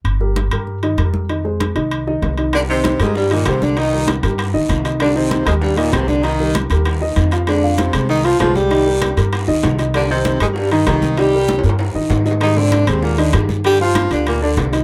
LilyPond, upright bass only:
\new Staff \with { instrumentName = "Upright bass" } { \clef bass \time 4/4 \key c \minor \tempo 4 = 194 g,,4. g,4. f,4~ | f,4. c,4. c,4~ | c,4. g,4. c,4~ | c,4. g,4 d,8 c,4~ |
c,4. ees,4. c,4~ | c,4. ees,4. f,4~ | f,4. c,4. c,4~ | c,4. g,4 d,8 c,4~ |
c,4. g,4. c,4~ | c,4. g,4 g,8 aes,4~ | aes,4. ees,4. g,4~ | g,4. d,4. c,4 | }